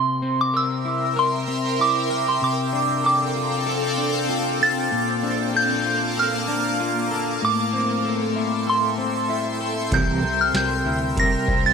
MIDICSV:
0, 0, Header, 1, 8, 480
1, 0, Start_track
1, 0, Tempo, 625000
1, 1857, Time_signature, 4, 2, 24, 8
1, 9012, End_track
2, 0, Start_track
2, 0, Title_t, "Synth bell"
2, 0, Program_c, 0, 98
2, 0, Note_on_c, 0, 84, 102
2, 281, Note_off_c, 0, 84, 0
2, 315, Note_on_c, 0, 86, 99
2, 429, Note_off_c, 0, 86, 0
2, 435, Note_on_c, 0, 88, 102
2, 913, Note_on_c, 0, 84, 89
2, 920, Note_off_c, 0, 88, 0
2, 1392, Note_on_c, 0, 86, 99
2, 1399, Note_off_c, 0, 84, 0
2, 1755, Note_off_c, 0, 86, 0
2, 1755, Note_on_c, 0, 84, 87
2, 1869, Note_off_c, 0, 84, 0
2, 1874, Note_on_c, 0, 86, 100
2, 2342, Note_off_c, 0, 86, 0
2, 2352, Note_on_c, 0, 86, 73
2, 3273, Note_off_c, 0, 86, 0
2, 3554, Note_on_c, 0, 93, 108
2, 4274, Note_on_c, 0, 91, 101
2, 4287, Note_off_c, 0, 93, 0
2, 4757, Note_on_c, 0, 89, 94
2, 4759, Note_off_c, 0, 91, 0
2, 5719, Note_on_c, 0, 86, 97
2, 5735, Note_off_c, 0, 89, 0
2, 6678, Note_on_c, 0, 84, 74
2, 6696, Note_off_c, 0, 86, 0
2, 7356, Note_off_c, 0, 84, 0
2, 7634, Note_on_c, 0, 91, 103
2, 7995, Note_on_c, 0, 89, 88
2, 7996, Note_off_c, 0, 91, 0
2, 8109, Note_off_c, 0, 89, 0
2, 8115, Note_on_c, 0, 91, 87
2, 8555, Note_off_c, 0, 91, 0
2, 8598, Note_on_c, 0, 94, 113
2, 8956, Note_on_c, 0, 93, 90
2, 8958, Note_off_c, 0, 94, 0
2, 9012, Note_off_c, 0, 93, 0
2, 9012, End_track
3, 0, Start_track
3, 0, Title_t, "Celesta"
3, 0, Program_c, 1, 8
3, 8097, Note_on_c, 1, 79, 57
3, 9012, Note_off_c, 1, 79, 0
3, 9012, End_track
4, 0, Start_track
4, 0, Title_t, "Ambient pad"
4, 0, Program_c, 2, 92
4, 0, Note_on_c, 2, 70, 73
4, 0, Note_on_c, 2, 76, 67
4, 0, Note_on_c, 2, 79, 71
4, 0, Note_on_c, 2, 84, 83
4, 1837, Note_off_c, 2, 70, 0
4, 1837, Note_off_c, 2, 76, 0
4, 1837, Note_off_c, 2, 84, 0
4, 1857, Note_on_c, 2, 60, 79
4, 1857, Note_on_c, 2, 77, 75
4, 1858, Note_on_c, 2, 69, 77
4, 1858, Note_on_c, 2, 86, 89
4, 3746, Note_off_c, 2, 79, 0
4, 3758, Note_off_c, 2, 60, 0
4, 3758, Note_off_c, 2, 69, 0
4, 3758, Note_off_c, 2, 77, 0
4, 3758, Note_off_c, 2, 86, 0
4, 3779, Note_on_c, 2, 81, 78
4, 3781, Note_on_c, 2, 58, 83
4, 3781, Note_on_c, 2, 86, 95
4, 3782, Note_on_c, 2, 77, 70
4, 5679, Note_off_c, 2, 81, 0
4, 5680, Note_off_c, 2, 58, 0
4, 5680, Note_off_c, 2, 77, 0
4, 5680, Note_off_c, 2, 86, 0
4, 5701, Note_on_c, 2, 76, 76
4, 5702, Note_on_c, 2, 69, 75
4, 5702, Note_on_c, 2, 79, 70
4, 5702, Note_on_c, 2, 84, 88
4, 7600, Note_off_c, 2, 69, 0
4, 7600, Note_off_c, 2, 76, 0
4, 7618, Note_on_c, 2, 76, 77
4, 7619, Note_on_c, 2, 70, 82
4, 9012, Note_off_c, 2, 70, 0
4, 9012, Note_off_c, 2, 76, 0
4, 9012, Note_off_c, 2, 79, 0
4, 9012, Note_off_c, 2, 84, 0
4, 9012, End_track
5, 0, Start_track
5, 0, Title_t, "Clean electric guitar"
5, 0, Program_c, 3, 27
5, 0, Note_on_c, 3, 48, 80
5, 170, Note_on_c, 3, 60, 70
5, 412, Note_on_c, 3, 70, 72
5, 653, Note_on_c, 3, 64, 60
5, 883, Note_off_c, 3, 70, 0
5, 892, Note_on_c, 3, 70, 76
5, 1132, Note_off_c, 3, 60, 0
5, 1135, Note_on_c, 3, 60, 60
5, 1366, Note_off_c, 3, 64, 0
5, 1375, Note_on_c, 3, 64, 70
5, 1605, Note_off_c, 3, 70, 0
5, 1614, Note_on_c, 3, 70, 70
5, 1846, Note_off_c, 3, 48, 0
5, 1855, Note_on_c, 3, 48, 82
5, 1903, Note_off_c, 3, 70, 0
5, 1904, Note_off_c, 3, 64, 0
5, 2092, Note_off_c, 3, 60, 0
5, 2095, Note_on_c, 3, 62, 69
5, 2334, Note_on_c, 3, 69, 69
5, 2576, Note_on_c, 3, 65, 57
5, 2811, Note_off_c, 3, 69, 0
5, 2814, Note_on_c, 3, 69, 70
5, 3051, Note_off_c, 3, 62, 0
5, 3054, Note_on_c, 3, 62, 57
5, 3292, Note_off_c, 3, 65, 0
5, 3296, Note_on_c, 3, 65, 69
5, 3533, Note_off_c, 3, 69, 0
5, 3536, Note_on_c, 3, 69, 70
5, 3772, Note_off_c, 3, 48, 0
5, 3775, Note_on_c, 3, 46, 84
5, 4013, Note_off_c, 3, 62, 0
5, 4017, Note_on_c, 3, 62, 67
5, 4255, Note_off_c, 3, 69, 0
5, 4258, Note_on_c, 3, 69, 72
5, 4497, Note_off_c, 3, 65, 0
5, 4500, Note_on_c, 3, 65, 60
5, 4737, Note_off_c, 3, 69, 0
5, 4740, Note_on_c, 3, 69, 69
5, 4970, Note_off_c, 3, 62, 0
5, 4979, Note_on_c, 3, 62, 62
5, 5212, Note_off_c, 3, 65, 0
5, 5221, Note_on_c, 3, 65, 69
5, 5455, Note_off_c, 3, 69, 0
5, 5459, Note_on_c, 3, 69, 74
5, 5696, Note_off_c, 3, 46, 0
5, 5700, Note_on_c, 3, 45, 81
5, 5746, Note_off_c, 3, 62, 0
5, 5747, Note_off_c, 3, 65, 0
5, 5939, Note_on_c, 3, 60, 66
5, 6175, Note_off_c, 3, 69, 0
5, 6178, Note_on_c, 3, 69, 79
5, 6418, Note_on_c, 3, 64, 58
5, 6648, Note_off_c, 3, 69, 0
5, 6657, Note_on_c, 3, 69, 70
5, 6893, Note_off_c, 3, 60, 0
5, 6896, Note_on_c, 3, 60, 58
5, 7134, Note_off_c, 3, 64, 0
5, 7137, Note_on_c, 3, 64, 73
5, 7368, Note_off_c, 3, 69, 0
5, 7377, Note_on_c, 3, 69, 70
5, 7613, Note_off_c, 3, 45, 0
5, 7616, Note_on_c, 3, 48, 86
5, 7665, Note_off_c, 3, 69, 0
5, 7854, Note_off_c, 3, 60, 0
5, 7857, Note_on_c, 3, 60, 64
5, 8098, Note_on_c, 3, 70, 71
5, 8121, Note_off_c, 3, 64, 0
5, 8338, Note_on_c, 3, 64, 62
5, 8569, Note_off_c, 3, 70, 0
5, 8578, Note_on_c, 3, 70, 68
5, 8815, Note_off_c, 3, 60, 0
5, 8818, Note_on_c, 3, 60, 58
5, 9012, Note_off_c, 3, 48, 0
5, 9012, Note_off_c, 3, 60, 0
5, 9012, Note_off_c, 3, 64, 0
5, 9012, Note_off_c, 3, 70, 0
5, 9012, End_track
6, 0, Start_track
6, 0, Title_t, "Clean electric guitar"
6, 0, Program_c, 4, 27
6, 7608, Note_on_c, 4, 48, 71
6, 7615, Note_on_c, 4, 52, 81
6, 7619, Note_on_c, 4, 55, 83
6, 7626, Note_on_c, 4, 60, 94
6, 7628, Note_on_c, 4, 67, 80
6, 7634, Note_on_c, 4, 70, 85
6, 7837, Note_off_c, 4, 70, 0
6, 7846, Note_on_c, 4, 70, 52
6, 7852, Note_off_c, 4, 48, 0
6, 7852, Note_off_c, 4, 67, 0
6, 7856, Note_off_c, 4, 52, 0
6, 7858, Note_off_c, 4, 55, 0
6, 7861, Note_off_c, 4, 60, 0
6, 7861, Note_on_c, 4, 67, 46
6, 7872, Note_on_c, 4, 60, 49
6, 7884, Note_on_c, 4, 55, 41
6, 8566, Note_off_c, 4, 55, 0
6, 8569, Note_on_c, 4, 55, 70
6, 8571, Note_off_c, 4, 70, 0
6, 8580, Note_off_c, 4, 60, 0
6, 8583, Note_on_c, 4, 60, 61
6, 8591, Note_off_c, 4, 67, 0
6, 8594, Note_on_c, 4, 67, 75
6, 8605, Note_on_c, 4, 70, 73
6, 9012, Note_off_c, 4, 55, 0
6, 9012, Note_off_c, 4, 60, 0
6, 9012, Note_off_c, 4, 67, 0
6, 9012, Note_off_c, 4, 70, 0
6, 9012, End_track
7, 0, Start_track
7, 0, Title_t, "Picked electric bass"
7, 0, Program_c, 5, 34
7, 7617, Note_on_c, 5, 36, 87
7, 7828, Note_off_c, 5, 36, 0
7, 7857, Note_on_c, 5, 36, 99
7, 8068, Note_off_c, 5, 36, 0
7, 8097, Note_on_c, 5, 36, 111
7, 8308, Note_off_c, 5, 36, 0
7, 8336, Note_on_c, 5, 38, 85
7, 8653, Note_off_c, 5, 38, 0
7, 8819, Note_on_c, 5, 36, 101
7, 9012, Note_off_c, 5, 36, 0
7, 9012, End_track
8, 0, Start_track
8, 0, Title_t, "Drums"
8, 7618, Note_on_c, 9, 36, 101
8, 7618, Note_on_c, 9, 42, 66
8, 7694, Note_off_c, 9, 36, 0
8, 7695, Note_off_c, 9, 42, 0
8, 8098, Note_on_c, 9, 54, 67
8, 8100, Note_on_c, 9, 38, 123
8, 8100, Note_on_c, 9, 42, 70
8, 8175, Note_off_c, 9, 54, 0
8, 8176, Note_off_c, 9, 38, 0
8, 8177, Note_off_c, 9, 42, 0
8, 8580, Note_on_c, 9, 36, 97
8, 8582, Note_on_c, 9, 42, 76
8, 8656, Note_off_c, 9, 36, 0
8, 8659, Note_off_c, 9, 42, 0
8, 8818, Note_on_c, 9, 36, 96
8, 8895, Note_off_c, 9, 36, 0
8, 9012, End_track
0, 0, End_of_file